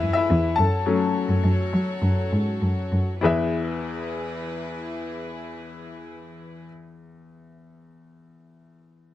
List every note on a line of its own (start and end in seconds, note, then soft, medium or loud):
0.00 0.25 F#2 medium
0.00 0.54 E3 soft
0.00 0.55 E3 medium
0.00 0.54 G#3 soft
0.00 0.60 B3 medium
0.00 0.14 E4 medium
0.00 0.56 E4 medium
0.00 0.55 G#4 medium
0.00 0.56 B4 medium
0.00 0.60 B4 medium
0.00 0.12 E5 medium
0.13 0.55 E4 medium
0.13 0.58 E5 medium
0.30 0.53 E2 loud
0.56 1.04 F#2 medium
0.56 3.21 F#3 medium
0.56 3.21 F#4 medium
0.56 3.21 A4 medium
0.56 2.58 A4 medium
0.56 3.21 C#5 medium
0.56 2.56 A5 medium
0.86 1.24 F#3 medium
0.86 1.24 A3 soft
0.86 1.24 C#4 medium
1.29 1.41 F#2 medium
1.44 1.67 F#2 medium
1.73 1.97 F#3 medium
2.02 2.26 F#2 medium
2.32 2.56 G#2 medium
2.61 2.87 F#2 medium
2.92 3.18 F#2 medium
3.21 6.65 E2 medium
3.21 6.65 E3 medium
3.21 6.63 E4 medium
3.21 6.65 E4 medium
3.21 6.65 G#4 medium
3.21 6.64 B4 medium
3.21 6.66 B4 medium
3.21 6.67 E5 medium